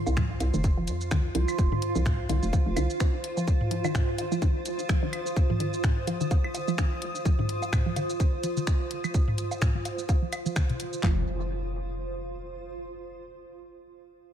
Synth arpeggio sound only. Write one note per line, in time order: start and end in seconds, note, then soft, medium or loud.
0.17 0.23 F3 medium
0.54 0.58 D#3 medium
0.77 0.82 F3 medium
1.11 1.17 D#3 medium
1.35 1.41 F3 medium
1.72 1.76 D#3 medium
1.96 2.00 F3 medium
2.29 2.35 D#3 medium
2.53 2.59 F3 medium
2.77 2.82 D#3 medium
3.00 3.06 C4 medium
3.37 3.42 F3 medium
3.71 3.77 F3 medium
3.84 3.89 D#3 medium
4.32 4.36 F3 medium
4.42 4.48 D#3 medium
4.89 4.95 F3 medium
5.03 5.07 D#3 medium
5.50 5.54 F3 medium
5.60 5.66 D#3 medium
6.07 6.13 F3 medium
6.21 6.25 D#3 medium
6.68 6.72 F3 medium
6.78 6.84 D#3 medium
7.25 7.31 F3 medium
7.39 7.43 D#3 medium
7.86 7.91 F3 medium
7.96 8.02 D#3 medium
8.44 8.49 F3 medium
8.57 8.61 D#3 medium
9.04 9.09 F3 medium
9.14 9.20 D#3 medium
9.62 9.67 F3 medium
9.75 9.79 D#3 medium
10.22 10.27 F3 medium
10.46 10.53 F3 medium
10.56 10.60 D#3 loud
10.70 10.74 C3 medium
11.04 11.25 F3 medium